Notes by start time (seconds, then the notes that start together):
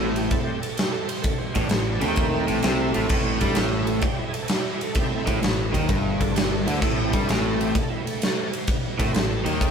Already playing: A1 A2 A3 C4
0.00 E4
0.16 G4, ride
0.31 A3 C4 E4, kick, ride
0.44 G4
0.62 A4, ride
0.77 G4, snare, ride
0.92 A4
1.08 C5, ride
1.22 A4, kick, ride
1.38 C5
1.54 A1 A2 D5, kick, ride
1.69 A1 A2 C5, snare, ride
1.84 D5
2.00 D#2 D#3 A3 C4 G4 E5, ride
2.16 kick, ride
2.48 A1 A2, ride
2.63 C2 C3, snare, ride
2.94 A1 A2, ride
3.08 A1 A2, kick, crash
3.40 G2 G3 A3 C4 E4 A4, kick, ride
3.55 A1 A2 G4, snare, ride
3.73 E4
3.82 G#4
3.87 A4, ride
4.01 G4, kick, ride
4.17 E4
4.29 G#4
4.33 A4, ride
4.48 G4, snare, ride
4.66 E4
4.77 G#4, ride
4.82 A4
4.94 A3 C4 E4 G4, kick, ride
5.14 E4
5.24 A1 A2 D#4, kick, ride
5.29 E4
5.41 A1 A2, snare, ride
5.73 D#2 D#3, kick, ride
5.88 G1 G2, kick, ride
6.16 G#4
6.21 A4, kick, ride
6.35 G4, snare, ride
6.51 A4
6.65 D2 D3 E4, ride
6.82 A1 A2 A3 C4 E4 A4, kick, crash
6.98 G4
7.13 G2 G3 A4, kick, ride
7.25 A1 A2 E4, ride
7.31 snare
7.43 A4
7.57 A3 C4 E4 G4, ride
7.75 A4, kick, ride
7.90 E4
8.04 A3, ride
8.22 snare, ride
8.53 ride
8.67 kick, ride
8.99 A1 A2 A3 C4 E4, kick, ride
9.12 A1 A2 B4 C5, ride
9.16 snare
9.28 A4
9.45 D#2 D#3 G4, ride
9.61 A4, kick, ride